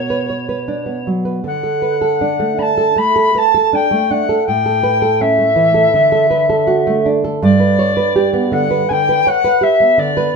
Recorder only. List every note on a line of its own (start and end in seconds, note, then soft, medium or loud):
0.00 1.09 C#5 medium
1.47 2.60 F#5 medium
2.58 2.99 A5 medium
2.58 2.63 B5 medium
2.98 3.39 B5 loud
3.38 3.76 A5 loud
3.75 4.12 G5 medium
4.10 4.46 F#5 medium
4.46 5.22 G5 loud
5.21 7.07 E5 medium
7.42 8.54 D5 loud
8.53 8.90 F#5 loud
8.89 9.29 G5 loud
8.89 8.93 G#5 medium
9.28 9.64 F#5 loud
9.63 10.00 E5 loud
9.99 10.35 D5 loud